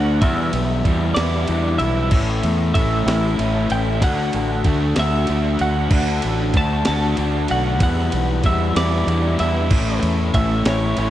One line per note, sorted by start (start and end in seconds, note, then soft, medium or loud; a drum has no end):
0.00 0.22 D2 medium
0.00 0.20 D3 medium
0.00 0.21 A3 medium
0.00 0.22 A3 medium
0.00 0.21 D4 medium
0.00 0.22 F#4 medium
0.00 0.20 F#5 medium
0.21 1.17 E2 medium
0.21 0.50 E2 loud
0.21 1.18 B2 loud
0.21 0.85 E3 loud
0.21 0.85 G3 medium
0.21 0.86 B3 loud
0.21 1.14 E5 medium
0.21 kick loud
0.21 ride loud
0.26 0.87 E4 loud
0.53 0.81 B1 medium
0.53 ride medium
0.85 1.13 E2 medium
0.85 1.18 E3 medium
0.85 1.18 G3 medium
0.85 1.17 B3 medium
0.85 1.17 E4 medium
0.85 kick medium
0.85 ride medium
1.15 1.45 E2 medium
1.15 1.50 E4 medium
1.15 1.75 D5 medium
1.15 snare loud
1.15 ride loud
1.19 1.82 E2 medium
1.19 1.82 B2 medium
1.19 1.47 E3 medium
1.19 1.49 G3 medium
1.19 1.50 B3 medium
1.48 1.77 E2 medium
1.48 2.10 E3 medium
1.48 2.11 G3 medium
1.48 2.11 B3 medium
1.48 2.12 D4 medium
1.48 ride medium
1.52 2.12 E4 loud
1.78 2.12 B1 medium
1.78 2.12 E4 medium
1.78 2.73 E5 medium
1.78 ride medium
2.11 2.40 A1 loud
2.11 3.07 A2 medium
2.11 2.72 E3 medium
2.11 2.74 A3 loud
2.11 2.75 C#4 medium
2.11 2.75 E4 loud
2.11 kick loud
2.11 crash loud
2.43 2.71 E2 loud
2.43 ride medium
2.74 3.03 A1 medium
2.74 3.08 E3 medium
2.74 3.08 A3 medium
2.74 3.06 C#4 medium
2.74 3.05 E4 medium
2.74 3.34 E5 medium
2.74 kick medium
2.74 ride medium
3.06 3.34 A1 loud
3.06 3.71 A2 medium
3.06 3.36 E3 medium
3.06 3.38 A3 medium
3.06 3.38 C#4 medium
3.06 3.39 E4 loud
3.06 snare loud
3.06 ride loud
3.37 3.67 A1 medium
3.37 3.99 E3 medium
3.37 4.01 A3 medium
3.37 4.00 C#4 loud
3.37 4.01 E4 medium
3.37 ride medium
3.70 4.02 A1 medium
3.70 4.02 E4 medium
3.70 3.80 G5 medium
3.70 ride medium
4.00 4.30 D2 loud
4.00 4.64 D3 medium
4.00 4.65 A3 loud
4.00 4.66 D4 loud
4.00 4.67 F#4 loud
4.00 4.94 F#5 loud
4.00 kick loud
4.00 ride loud
4.33 4.62 A1 medium
4.33 ride medium
4.64 4.93 D2 medium
4.64 4.98 D3 medium
4.64 4.97 A3 medium
4.64 4.97 D4 medium
4.64 4.95 F#4 loud
4.64 kick medium
4.64 ride medium
4.96 5.25 D2 medium
4.96 5.28 D3 medium
4.96 5.28 A3 medium
4.96 5.30 D4 medium
4.96 5.31 F#4 loud
4.96 5.61 E5 medium
4.96 snare loud
4.96 ride loud
5.27 5.57 D2 medium
5.27 5.90 D3 medium
5.27 5.90 A3 medium
5.27 5.92 D4 medium
5.27 ride medium
5.32 5.91 F#4 loud
5.59 5.88 D2 medium
5.59 5.92 F#4 medium
5.59 6.57 F#5 medium
5.59 ride medium
5.91 6.19 D2 loud
5.91 6.53 D3 medium
5.91 6.54 A3 medium
5.91 6.56 D4 loud
5.91 6.56 F#4 loud
5.91 kick loud
5.91 crash loud
6.22 6.52 A1 loud
6.22 ride medium
6.54 6.82 D2 medium
6.54 6.87 D3 medium
6.54 6.86 A3 medium
6.54 6.85 D4 medium
6.54 6.84 F#4 medium
6.54 6.86 A5 loud
6.54 kick medium
6.54 ride medium
6.85 7.15 D2 medium
6.85 7.16 D3 medium
6.85 7.17 A3 medium
6.85 7.18 D4 medium
6.85 7.19 F#4 medium
6.85 7.46 A5 loud
6.85 snare loud
6.85 ride loud
7.17 7.46 D2 medium
7.17 7.79 D3 medium
7.17 7.80 A3 medium
7.17 7.80 D4 medium
7.17 7.81 F#4 medium
7.17 ride medium
7.48 7.81 B1 loud
7.48 7.81 F#4 medium
7.48 7.82 F#5 medium
7.48 ride medium
7.79 8.75 E2 loud
7.79 8.09 E2 loud
7.79 8.75 B2 medium
7.79 8.43 E3 medium
7.79 8.42 G3 loud
7.79 8.43 B3 loud
7.79 8.45 E4 medium
7.79 kick loud
7.79 ride loud
7.83 8.42 F#5 medium
8.12 8.41 B1 medium
8.12 ride medium
8.43 8.72 E2 medium
8.43 8.75 E3 medium
8.43 8.74 G3 medium
8.43 8.73 B3 medium
8.43 8.72 E4 medium
8.43 8.76 E5 medium
8.43 kick medium
8.43 ride medium
8.74 9.04 E2 medium
8.74 9.40 E2 medium
8.74 9.39 B2 medium
8.74 9.05 E3 medium
8.74 9.06 G3 medium
8.74 9.07 B3 medium
8.74 9.08 E4 medium
8.74 9.40 D5 medium
8.74 snare loud
8.74 ride loud
9.06 9.35 E2 loud
9.06 9.68 E3 medium
9.06 9.69 G3 medium
9.06 9.70 B3 medium
9.06 9.71 D4 medium
9.06 9.70 E4 medium
9.06 ride medium
9.39 9.71 E2 loud
9.39 9.71 E4 medium
9.39 9.99 E5 medium
9.39 ride medium
9.70 9.99 A1 loud
9.70 10.66 A2 medium
9.70 10.32 E3 loud
9.70 10.35 A3 medium
9.70 10.34 C#4 loud
9.70 10.35 E4 loud
9.70 kick loud
9.70 crash loud
10.03 10.31 E2 medium
10.03 ride medium
10.34 10.62 A1 medium
10.34 10.66 E3 medium
10.34 10.66 A3 medium
10.34 10.65 C#4 medium
10.34 10.64 E4 medium
10.34 10.66 E5 loud
10.34 kick medium
10.34 ride medium
10.65 10.94 A1 medium
10.65 11.10 A2 medium
10.65 10.96 E3 medium
10.65 10.98 A3 medium
10.65 10.98 C#4 medium
10.65 10.99 E4 loud
10.65 11.10 C#5 loud
10.65 snare loud
10.65 ride loud
10.97 11.10 A1 loud
10.97 11.10 E3 medium
10.97 11.10 A3 medium
10.97 11.10 C#4 medium
10.97 11.10 E4 medium
10.97 ride medium